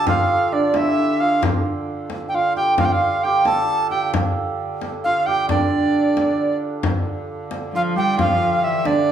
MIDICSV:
0, 0, Header, 1, 6, 480
1, 0, Start_track
1, 0, Key_signature, -1, "minor"
1, 0, Tempo, 450450
1, 75, Time_signature, 6, 3, 24, 8
1, 9717, End_track
2, 0, Start_track
2, 0, Title_t, "Recorder"
2, 0, Program_c, 0, 74
2, 85, Note_on_c, 0, 77, 81
2, 564, Note_on_c, 0, 74, 68
2, 580, Note_off_c, 0, 77, 0
2, 810, Note_on_c, 0, 76, 82
2, 826, Note_off_c, 0, 74, 0
2, 1281, Note_on_c, 0, 77, 76
2, 1297, Note_off_c, 0, 76, 0
2, 1521, Note_off_c, 0, 77, 0
2, 2437, Note_on_c, 0, 79, 45
2, 2502, Note_on_c, 0, 77, 68
2, 2518, Note_off_c, 0, 79, 0
2, 2725, Note_off_c, 0, 77, 0
2, 2731, Note_on_c, 0, 79, 76
2, 2951, Note_off_c, 0, 79, 0
2, 2969, Note_on_c, 0, 77, 73
2, 3038, Note_on_c, 0, 79, 57
2, 3054, Note_off_c, 0, 77, 0
2, 3114, Note_on_c, 0, 77, 70
2, 3130, Note_off_c, 0, 79, 0
2, 3446, Note_on_c, 0, 79, 82
2, 3462, Note_off_c, 0, 77, 0
2, 3686, Note_on_c, 0, 81, 90
2, 3702, Note_off_c, 0, 79, 0
2, 4153, Note_off_c, 0, 81, 0
2, 4159, Note_on_c, 0, 79, 70
2, 4385, Note_off_c, 0, 79, 0
2, 5372, Note_on_c, 0, 77, 90
2, 5607, Note_on_c, 0, 79, 84
2, 5623, Note_off_c, 0, 77, 0
2, 5846, Note_off_c, 0, 79, 0
2, 5852, Note_on_c, 0, 74, 72
2, 7004, Note_off_c, 0, 74, 0
2, 8267, Note_on_c, 0, 77, 91
2, 8331, Note_off_c, 0, 77, 0
2, 8499, Note_on_c, 0, 79, 83
2, 8712, Note_off_c, 0, 79, 0
2, 8730, Note_on_c, 0, 77, 90
2, 9206, Note_on_c, 0, 76, 80
2, 9222, Note_off_c, 0, 77, 0
2, 9446, Note_on_c, 0, 74, 79
2, 9462, Note_off_c, 0, 76, 0
2, 9717, Note_off_c, 0, 74, 0
2, 9717, End_track
3, 0, Start_track
3, 0, Title_t, "Hammered dulcimer"
3, 0, Program_c, 1, 15
3, 0, Note_on_c, 1, 62, 61
3, 0, Note_on_c, 1, 67, 71
3, 0, Note_on_c, 1, 69, 74
3, 83, Note_on_c, 1, 65, 70
3, 550, Note_off_c, 1, 62, 0
3, 554, Note_on_c, 1, 62, 61
3, 803, Note_on_c, 1, 64, 71
3, 867, Note_off_c, 1, 65, 0
3, 1039, Note_off_c, 1, 64, 0
3, 1043, Note_on_c, 1, 64, 62
3, 1287, Note_on_c, 1, 65, 52
3, 1350, Note_off_c, 1, 64, 0
3, 2490, Note_off_c, 1, 65, 0
3, 2495, Note_on_c, 1, 65, 60
3, 2730, Note_off_c, 1, 67, 0
3, 2734, Note_on_c, 1, 67, 60
3, 2968, Note_off_c, 1, 69, 0
3, 2982, Note_off_c, 1, 65, 0
3, 2986, Note_on_c, 1, 65, 64
3, 3132, Note_off_c, 1, 65, 0
3, 3136, Note_on_c, 1, 65, 61
3, 3455, Note_off_c, 1, 67, 0
3, 3460, Note_on_c, 1, 67, 68
3, 3696, Note_on_c, 1, 69, 79
3, 4161, Note_off_c, 1, 67, 0
3, 4165, Note_on_c, 1, 67, 56
3, 4531, Note_off_c, 1, 62, 0
3, 5384, Note_off_c, 1, 65, 0
3, 5389, Note_on_c, 1, 65, 68
3, 5620, Note_off_c, 1, 67, 0
3, 5625, Note_on_c, 1, 67, 69
3, 5857, Note_on_c, 1, 62, 64
3, 6816, Note_off_c, 1, 69, 0
3, 8254, Note_off_c, 1, 65, 0
3, 8258, Note_on_c, 1, 65, 65
3, 8478, Note_off_c, 1, 67, 0
3, 8482, Note_on_c, 1, 67, 67
3, 8703, Note_off_c, 1, 65, 0
3, 8708, Note_on_c, 1, 65, 68
3, 9428, Note_off_c, 1, 62, 0
3, 9433, Note_on_c, 1, 62, 61
3, 9717, Note_off_c, 1, 62, 0
3, 9717, Note_off_c, 1, 65, 0
3, 9717, Note_off_c, 1, 67, 0
3, 9717, End_track
4, 0, Start_track
4, 0, Title_t, "Viola da gamba"
4, 0, Program_c, 2, 42
4, 8229, Note_on_c, 2, 53, 73
4, 8473, Note_on_c, 2, 55, 84
4, 8489, Note_off_c, 2, 53, 0
4, 8697, Note_on_c, 2, 53, 79
4, 8713, Note_off_c, 2, 55, 0
4, 9176, Note_off_c, 2, 53, 0
4, 9182, Note_on_c, 2, 52, 65
4, 9429, Note_on_c, 2, 50, 70
4, 9445, Note_off_c, 2, 52, 0
4, 9717, Note_off_c, 2, 50, 0
4, 9717, End_track
5, 0, Start_track
5, 0, Title_t, "Hurdy-gurdy"
5, 0, Program_c, 3, 110
5, 0, Note_on_c, 3, 50, 63
5, 1509, Note_off_c, 3, 50, 0
5, 1509, Note_on_c, 3, 50, 57
5, 7287, Note_off_c, 3, 50, 0
5, 7287, Note_on_c, 3, 50, 68
5, 9717, Note_off_c, 3, 50, 0
5, 9717, End_track
6, 0, Start_track
6, 0, Title_t, "Frame drum"
6, 70, Note_on_c, 9, 64, 72
6, 177, Note_off_c, 9, 64, 0
6, 555, Note_on_c, 9, 64, 25
6, 661, Note_off_c, 9, 64, 0
6, 787, Note_on_c, 9, 64, 62
6, 894, Note_off_c, 9, 64, 0
6, 1520, Note_on_c, 9, 64, 81
6, 1626, Note_off_c, 9, 64, 0
6, 2235, Note_on_c, 9, 64, 60
6, 2342, Note_off_c, 9, 64, 0
6, 2482, Note_on_c, 9, 64, 20
6, 2588, Note_off_c, 9, 64, 0
6, 2721, Note_on_c, 9, 64, 23
6, 2827, Note_off_c, 9, 64, 0
6, 2961, Note_on_c, 9, 64, 70
6, 3067, Note_off_c, 9, 64, 0
6, 3680, Note_on_c, 9, 64, 61
6, 3786, Note_off_c, 9, 64, 0
6, 3919, Note_on_c, 9, 64, 24
6, 4026, Note_off_c, 9, 64, 0
6, 4160, Note_on_c, 9, 64, 25
6, 4266, Note_off_c, 9, 64, 0
6, 4407, Note_on_c, 9, 64, 83
6, 4514, Note_off_c, 9, 64, 0
6, 5131, Note_on_c, 9, 64, 61
6, 5237, Note_off_c, 9, 64, 0
6, 5374, Note_on_c, 9, 64, 22
6, 5481, Note_off_c, 9, 64, 0
6, 5618, Note_on_c, 9, 64, 24
6, 5724, Note_off_c, 9, 64, 0
6, 5850, Note_on_c, 9, 64, 72
6, 5957, Note_off_c, 9, 64, 0
6, 6331, Note_on_c, 9, 64, 24
6, 6438, Note_off_c, 9, 64, 0
6, 6574, Note_on_c, 9, 64, 67
6, 6680, Note_off_c, 9, 64, 0
6, 7281, Note_on_c, 9, 64, 78
6, 7387, Note_off_c, 9, 64, 0
6, 8002, Note_on_c, 9, 64, 61
6, 8108, Note_off_c, 9, 64, 0
6, 8246, Note_on_c, 9, 64, 23
6, 8353, Note_off_c, 9, 64, 0
6, 8484, Note_on_c, 9, 64, 25
6, 8591, Note_off_c, 9, 64, 0
6, 8724, Note_on_c, 9, 64, 69
6, 8831, Note_off_c, 9, 64, 0
6, 9435, Note_on_c, 9, 64, 66
6, 9541, Note_off_c, 9, 64, 0
6, 9684, Note_on_c, 9, 64, 25
6, 9717, Note_off_c, 9, 64, 0
6, 9717, End_track
0, 0, End_of_file